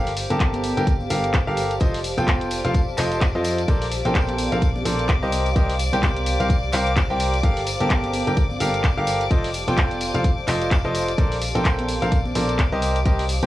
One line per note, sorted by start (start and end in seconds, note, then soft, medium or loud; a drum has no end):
0.00 0.28 G1 medium
0.00 0.10 G4 medium
0.00 11.17 G4 medium
0.00 0.10 A4 medium
0.00 0.10 A#4 medium
0.00 12.82 C5 medium
0.00 13.46 D5 medium
0.00 0.10 F5 loud
0.00 12.82 F5 medium
0.00 13.46 D6 medium
0.06 open hi-hat medium
0.06 tambourine soft
0.17 open hi-hat loud
0.17 tambourine medium
0.30 0.74 G1 loud
0.30 0.74 G4 medium
0.30 0.74 A4 medium
0.30 0.74 A#4 medium
0.30 0.74 A5 loud
0.30 closed hi-hat medium
0.30 tambourine soft
0.30 high conga medium
0.40 kick loud
0.40 clap loud
0.40 closed hi-hat medium
0.40 tambourine soft
0.53 closed hi-hat soft
0.53 tambourine soft
0.53 high conga medium
0.62 5.32 A5 medium
0.62 open hi-hat loud
0.62 tambourine medium
0.77 1.08 G1 loud
0.77 0.92 G4 medium
0.77 0.92 A4 medium
0.77 0.92 A#4 medium
0.77 0.92 G5 medium
0.77 closed hi-hat medium
0.77 tambourine soft
0.87 kick loud
0.87 closed hi-hat medium
0.87 tambourine medium
1.00 tambourine soft
1.00 high conga medium
1.10 1.45 G1 loud
1.10 1.36 G4 medium
1.10 1.36 A4 medium
1.10 1.36 A#4 medium
1.10 1.36 F5 loud
1.10 open hi-hat loud
1.10 tambourine medium
1.24 closed hi-hat medium
1.24 tambourine soft
1.34 kick loud
1.34 clap loud
1.34 closed hi-hat medium
1.34 tambourine medium
1.47 1.79 G1 medium
1.47 1.72 G4 medium
1.47 1.72 A4 medium
1.47 1.72 A#4 medium
1.47 1.72 F5 loud
1.47 tambourine soft
1.57 open hi-hat loud
1.57 tambourine medium
1.70 closed hi-hat medium
1.70 tambourine soft
1.80 2.15 F1 medium
1.80 1.98 F4 medium
1.80 1.98 A4 medium
1.80 1.98 C5 medium
1.80 1.98 D#5 loud
1.80 kick loud
1.80 closed hi-hat medium
1.80 tambourine medium
1.94 open hi-hat medium
1.94 tambourine soft
2.04 open hi-hat loud
2.04 tambourine medium
2.17 2.62 F1 medium
2.17 2.61 F4 medium
2.17 2.61 A4 medium
2.17 2.61 C5 medium
2.17 2.61 G5 loud
2.17 closed hi-hat medium
2.17 tambourine soft
2.17 high conga loud
2.28 kick loud
2.28 clap loud
2.28 closed hi-hat medium
2.28 tambourine medium
2.41 closed hi-hat soft
2.41 tambourine soft
2.51 open hi-hat loud
2.51 tambourine medium
2.64 2.96 F1 loud
2.64 2.79 F4 medium
2.64 2.79 A4 medium
2.64 2.79 C5 medium
2.64 2.79 F5 medium
2.64 closed hi-hat medium
2.64 tambourine soft
2.74 kick loud
2.74 closed hi-hat medium
2.74 tambourine medium
2.88 tambourine soft
2.97 3.32 F1 loud
2.97 3.23 F4 medium
2.97 3.23 A4 medium
2.97 3.23 C5 medium
2.97 3.23 D#5 loud
2.97 clap medium
2.97 open hi-hat loud
2.97 tambourine loud
3.12 closed hi-hat medium
3.12 tambourine soft
3.21 kick loud
3.21 clap loud
3.21 closed hi-hat medium
3.21 tambourine medium
3.35 3.66 F2 medium
3.35 3.60 F4 medium
3.35 3.60 A4 medium
3.35 3.60 C5 medium
3.35 3.60 D#5 loud
3.35 tambourine soft
3.44 open hi-hat loud
3.44 tambourine loud
3.58 closed hi-hat medium
3.58 tambourine soft
3.68 4.03 A#1 medium
3.68 3.85 A4 loud
3.68 3.85 A#4 medium
3.68 3.85 C5 medium
3.68 3.85 D5 loud
3.68 kick loud
3.68 closed hi-hat medium
3.68 tambourine medium
3.82 open hi-hat medium
3.82 tambourine soft
3.92 open hi-hat loud
3.92 tambourine medium
4.05 4.49 A#1 medium
4.05 4.49 A4 medium
4.05 4.49 A#4 medium
4.05 4.49 C5 medium
4.05 4.49 G5 loud
4.05 closed hi-hat medium
4.05 tambourine soft
4.05 high conga medium
4.15 kick loud
4.15 clap loud
4.15 closed hi-hat medium
4.15 tambourine soft
4.28 closed hi-hat soft
4.28 tambourine soft
4.28 high conga medium
4.38 open hi-hat loud
4.38 tambourine medium
4.52 4.83 A#1 loud
4.52 4.67 A4 medium
4.52 4.67 A#4 medium
4.52 4.67 C5 medium
4.52 4.67 F5 medium
4.52 closed hi-hat medium
4.52 tambourine soft
4.62 kick loud
4.62 closed hi-hat medium
4.62 tambourine medium
4.76 tambourine soft
4.76 high conga medium
4.85 5.20 A#1 loud
4.85 5.11 A4 medium
4.85 5.11 A#4 medium
4.85 5.11 C5 medium
4.85 5.11 D5 loud
4.85 open hi-hat loud
4.85 tambourine medium
4.99 closed hi-hat medium
4.99 tambourine soft
5.08 kick loud
5.08 clap loud
5.08 closed hi-hat medium
5.08 tambourine soft
5.22 5.54 C2 loud
5.22 5.47 G4 medium
5.22 5.47 A#4 medium
5.22 5.47 C5 medium
5.22 5.47 D#5 loud
5.22 tambourine soft
5.32 open hi-hat loud
5.32 tambourine loud
5.46 closed hi-hat medium
5.46 tambourine soft
5.56 5.90 C2 medium
5.56 5.73 G4 loud
5.56 5.73 A#4 medium
5.56 5.73 C5 medium
5.56 5.73 D#5 loud
5.56 kick loud
5.56 closed hi-hat medium
5.56 tambourine medium
5.69 open hi-hat medium
5.69 tambourine soft
5.76 7.43 A#5 medium
5.76 open hi-hat loud
5.76 tambourine medium
5.92 6.37 C2 loud
5.92 6.36 G4 medium
5.92 6.36 A#4 medium
5.92 6.36 C5 medium
5.92 6.36 G5 loud
5.92 closed hi-hat soft
5.92 tambourine soft
5.92 high conga medium
6.03 kick loud
6.03 clap loud
6.03 closed hi-hat medium
6.03 tambourine medium
6.16 closed hi-hat soft
6.16 tambourine soft
6.26 open hi-hat loud
6.26 tambourine medium
6.40 6.71 C2 loud
6.40 6.54 G4 medium
6.40 6.54 A#4 medium
6.40 6.54 C5 medium
6.40 6.54 F5 medium
6.40 closed hi-hat soft
6.40 tambourine soft
6.50 kick loud
6.50 closed hi-hat medium
6.50 tambourine medium
6.63 tambourine soft
6.72 7.07 C2 loud
6.72 6.90 G4 medium
6.72 6.90 A#4 medium
6.72 6.90 C5 medium
6.72 6.90 F5 loud
6.72 clap medium
6.72 open hi-hat loud
6.72 tambourine medium
6.86 closed hi-hat medium
6.86 tambourine soft
6.96 kick loud
6.96 clap loud
6.96 closed hi-hat medium
6.96 tambourine medium
7.10 7.41 C2 loud
7.10 7.35 G4 medium
7.10 7.35 A#4 medium
7.10 7.35 C5 medium
7.10 7.35 G5 loud
7.10 tambourine soft
7.20 open hi-hat loud
7.20 tambourine medium
7.33 closed hi-hat medium
7.33 tambourine soft
7.43 7.78 G1 loud
7.43 7.60 G4 medium
7.43 7.60 A4 medium
7.43 7.60 A#4 medium
7.43 7.60 F5 loud
7.43 kick loud
7.43 closed hi-hat medium
7.43 tambourine soft
7.54 12.82 A5 medium
7.54 open hi-hat medium
7.54 tambourine soft
7.66 open hi-hat loud
7.66 tambourine loud
7.80 8.24 G1 loud
7.80 8.24 G4 medium
7.80 8.24 A4 medium
7.80 8.24 A#4 medium
7.80 8.24 A5 loud
7.80 closed hi-hat medium
7.80 tambourine soft
7.80 high conga medium
7.90 kick loud
7.90 clap loud
7.90 closed hi-hat medium
7.90 tambourine medium
8.04 closed hi-hat soft
8.04 tambourine soft
8.04 high conga medium
8.13 open hi-hat loud
8.13 tambourine medium
8.27 8.58 G1 loud
8.27 8.42 G4 medium
8.27 8.42 A4 medium
8.27 8.42 A#4 medium
8.27 8.42 G5 medium
8.27 closed hi-hat medium
8.27 tambourine soft
8.37 kick loud
8.37 closed hi-hat medium
8.37 tambourine medium
8.50 tambourine soft
8.50 high conga medium
8.60 8.95 G1 loud
8.60 8.86 G4 medium
8.60 8.86 A4 medium
8.60 8.86 A#4 medium
8.60 8.86 F5 loud
8.60 open hi-hat loud
8.60 tambourine loud
8.74 closed hi-hat medium
8.84 kick loud
8.84 clap loud
8.84 closed hi-hat medium
8.84 tambourine soft
8.97 9.29 G1 loud
8.97 9.22 G4 loud
8.97 9.22 A4 medium
8.97 9.22 A#4 medium
8.97 9.22 F5 loud
8.97 tambourine soft
9.07 open hi-hat loud
9.07 tambourine loud
9.21 closed hi-hat medium
9.21 tambourine soft
9.31 9.65 F1 medium
9.31 9.48 F4 medium
9.31 9.48 A4 medium
9.31 9.48 C5 medium
9.31 9.48 D#5 loud
9.31 kick loud
9.31 closed hi-hat medium
9.31 tambourine soft
9.44 open hi-hat medium
9.44 tambourine soft
9.54 open hi-hat loud
9.54 tambourine medium
9.68 10.12 F1 medium
9.68 10.11 F4 medium
9.68 10.11 A4 medium
9.68 10.11 C5 medium
9.68 10.11 G5 loud
9.68 closed hi-hat medium
9.68 tambourine soft
9.68 high conga medium
9.77 kick loud
9.77 clap loud
9.77 closed hi-hat medium
9.77 tambourine soft
9.91 closed hi-hat soft
9.91 tambourine soft
10.01 open hi-hat medium
10.01 tambourine medium
10.14 10.46 F1 medium
10.14 10.29 F4 medium
10.14 10.29 A4 medium
10.14 10.29 C5 medium
10.14 10.29 F5 medium
10.14 closed hi-hat medium
10.14 tambourine soft
10.24 kick loud
10.24 closed hi-hat medium
10.24 tambourine soft
10.38 tambourine soft
10.47 10.82 F1 loud
10.47 10.73 F4 medium
10.47 10.73 A4 medium
10.47 10.73 C5 medium
10.47 10.73 D#5 loud
10.47 clap medium
10.47 open hi-hat loud
10.47 tambourine loud
10.62 closed hi-hat medium
10.62 tambourine soft
10.71 kick loud
10.71 clap loud
10.71 closed hi-hat medium
10.71 tambourine medium
10.85 11.16 F1 medium
10.85 11.10 F4 loud
10.85 11.10 A4 medium
10.85 11.10 C5 medium
10.85 11.10 D#5 loud
10.85 tambourine soft
10.95 open hi-hat medium
10.95 tambourine medium
11.08 closed hi-hat medium
11.08 tambourine soft
11.18 11.53 A#1 loud
11.18 13.46 G4 medium
11.18 11.35 A4 loud
11.18 11.35 A#4 medium
11.18 11.35 C5 medium
11.18 11.35 D5 loud
11.18 kick loud
11.18 closed hi-hat medium
11.18 tambourine soft
11.32 open hi-hat medium
11.32 tambourine soft
11.41 open hi-hat loud
11.41 tambourine medium
11.55 11.99 A#1 medium
11.55 11.99 A4 medium
11.55 11.99 A#4 medium
11.55 11.99 C5 medium
11.55 11.99 G5 loud
11.55 closed hi-hat medium
11.55 tambourine soft
11.55 high conga medium
11.65 kick loud
11.65 clap loud
11.65 closed hi-hat medium
11.65 tambourine soft
11.78 closed hi-hat soft
11.78 tambourine soft
11.78 high conga medium
11.88 open hi-hat medium
11.88 tambourine medium
12.02 12.33 A#1 medium
12.02 12.17 A4 medium
12.02 12.17 A#4 medium
12.02 12.17 C5 medium
12.02 12.17 F5 medium
12.02 closed hi-hat medium
12.02 tambourine soft
12.12 kick loud
12.12 closed hi-hat medium
12.12 tambourine soft
12.25 tambourine soft
12.25 high conga medium
12.35 12.70 A#1 loud
12.35 12.61 A4 medium
12.35 12.61 A#4 medium
12.35 12.61 C5 medium
12.35 12.61 D5 loud
12.35 open hi-hat loud
12.35 tambourine medium
12.49 closed hi-hat medium
12.49 tambourine soft
12.59 kick loud
12.59 clap loud
12.59 closed hi-hat medium
12.59 tambourine soft
12.72 13.04 C2 medium
12.72 12.97 G4 loud
12.72 12.97 A#4 medium
12.72 12.97 C5 medium
12.72 12.97 D#5 loud
12.72 tambourine soft
12.82 open hi-hat loud
12.82 tambourine medium
12.89 13.46 C5 medium
12.96 13.46 F5 medium
12.96 closed hi-hat medium
12.96 tambourine soft
13.05 13.40 C2 medium
13.05 13.23 G4 loud
13.05 13.23 A#4 medium
13.05 13.23 C5 medium
13.05 13.23 D#5 loud
13.05 kick loud
13.05 closed hi-hat medium
13.05 tambourine medium
13.19 open hi-hat medium
13.19 tambourine soft
13.26 13.46 A#5 medium
13.26 open hi-hat loud
13.26 tambourine medium
13.43 13.46 C2 loud
13.43 13.46 G4 medium
13.43 13.46 A#4 medium
13.43 13.46 C5 medium
13.43 13.46 G5 loud
13.43 closed hi-hat medium
13.43 tambourine soft
13.43 high conga loud